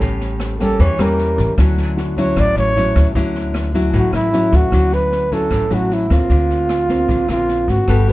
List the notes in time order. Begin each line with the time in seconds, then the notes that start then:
Already playing: G3 C#4
0.01 A1 A2, kick, snare
0.20 snare
0.40 cross-stick, snare
0.60 G3 A#3 C#4 A4, kick, snare
0.79 E2 E3 C#5, kick, snare
0.99 E2 G3 A#3 C#4 A#4, cross-stick, snare
1.18 snare
1.38 A1, kick, snare
1.58 D2 D3 F#3 C#4 E4, kick, cross-stick, snare
1.77 snare
1.97 F#4, snare
2.17 F#3 C#4 E4 C#5, kick, snare
2.36 A1 A2 D5, kick, cross-stick, snare
2.56 A1 C#5, snare
2.76 F#3 C#4 E4, snare
2.95 D2, kick, cross-stick, snare
3.15 D2 D3 F#3 C#4 E4, kick, snare
3.35 snare
3.54 cross-stick, snare
3.74 F#3 C#4 E4, kick, snare
3.93 A1 A2 F#4, kick, snare
4.12 A1 E4, cross-stick, snare
4.33 F#3 C#4 E4, snare
4.52 D2 F#4, kick, snare
4.72 D2 D3 F#3 C#4 E4, kick, cross-stick, snare
4.92 B4, snare
5.12 snare
5.31 F#3 C#4 E4 A4, kick, snare
5.51 A1 A2, kick, cross-stick, snare
5.70 A1 F#3 C#4 E4 F#4, snare
5.91 E4, snare
6.10 D2 A#3 C4 F4, kick, cross-stick, snare
6.30 D2 D3, kick, snare
6.50 snare
6.69 cross-stick, snare
6.89 A#3 C4, kick, snare
7.08 A#1 D3, kick, snare
7.29 A#1 A#3 C4 F4, cross-stick, snare
7.48 snare
7.68 G#1 F#4, kick, snare
7.88 G1 G3 B3 F#4 A4, kick, cross-stick, snare
8.08 B4, snare